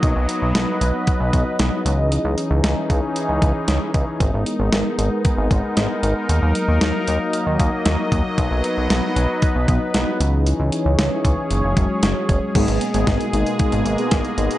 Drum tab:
CC |----------------|----------------|----------------|----------------|
HH |x-x-x-x-x-x-x-x-|x-x-x-x-x-x-x-x-|x-x-x-x-x-x-x-x-|x-x-x-x-x-x-x-x-|
SD |----o-------o---|----o-------o---|----o-------o---|----o-------o---|
BD |o-------o-o-----|------o---o---o-|o-------o-o-----|----------o---o-|

CC |----------------|----------------|x---------------|
HH |x-x-x-x-x-x-x-x-|x-x-x-x-x-x-x-x-|xxxxxxxxxxxxxxxx|
SD |----o-------o---|----o-------o---|----o-------o---|
BD |o-------o-o-----|------o---o---o-|o---o---o---o---|